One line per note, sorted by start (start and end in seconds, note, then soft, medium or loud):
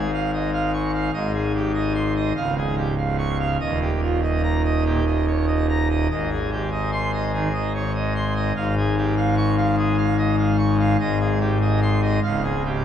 0.00 1.10 G#1 medium
0.00 1.10 G#2 loud
0.00 0.11 G#4 medium
0.14 0.31 F5 medium
0.34 0.50 D#5 medium
0.54 0.71 F5 medium
0.74 0.91 C#6 medium
0.94 1.11 F5 medium
1.14 2.32 G#1 medium
1.14 2.32 G#2 medium
1.14 1.32 D#5 medium
1.34 1.52 G#4 medium
1.55 1.72 G4 medium
1.74 1.93 D#5 medium
1.95 2.13 C6 loud
2.16 2.33 D#5 medium
2.37 3.57 C#1 medium
2.37 3.57 C#2 medium
2.37 2.55 F5 medium
2.57 2.75 G#4 medium
2.77 2.95 G4 medium
2.98 3.16 F5 medium
3.19 3.37 C#6 medium
3.40 3.57 F5 medium
3.60 6.07 D#1 medium
3.60 6.07 D#2 medium
3.60 3.79 D#5 medium
3.81 4.00 G4 medium
4.02 4.20 F4 medium
4.23 4.42 D#5 medium
4.43 4.62 A#5 medium
4.65 4.84 D#5 medium
4.85 5.00 A#2 medium
4.85 5.04 G4 medium
5.07 5.25 D#5 medium
5.28 5.45 C#5 medium
5.48 5.67 D#5 medium
5.69 5.88 A#5 medium
5.90 6.07 D#5 medium
6.11 8.52 G#1 medium
6.11 8.52 G#2 medium
6.11 6.29 D#5 medium
6.31 6.50 G#4 medium
6.51 6.69 G4 medium
6.71 6.90 D#5 medium
6.92 7.11 C6 medium
7.13 7.32 D#5 medium
7.34 7.48 D#3 medium
7.34 7.52 G#4 medium
7.54 7.73 D#5 medium
7.75 7.92 C#5 medium
7.95 8.13 D#5 medium
8.16 8.34 C6 medium
8.36 8.53 D#5 medium
8.56 10.96 G#1 medium
8.56 10.96 G#2 medium
8.56 8.74 F5 medium
8.77 8.95 G#4 medium
8.97 9.14 G4 medium
9.17 9.35 F5 medium
9.37 9.56 C#6 loud
9.57 9.76 F5 medium
9.78 9.92 G#3 medium
9.78 9.96 G#4 medium
9.98 10.16 F5 medium
10.18 10.36 D#5 medium
10.39 10.57 F5 medium
10.59 10.77 C#6 medium
10.79 10.97 F5 medium
11.00 12.19 G#1 loud
11.00 12.19 G#2 medium
11.00 11.18 D#5 medium
11.20 11.39 G#4 medium
11.40 11.58 G4 medium
11.62 11.80 D#5 medium
11.82 12.00 C6 loud
12.02 12.20 D#5 medium
12.23 12.83 C#1 medium
12.23 12.83 C#2 loud
12.23 12.42 F5 loud
12.44 12.62 G#4 medium
12.65 12.82 G4 medium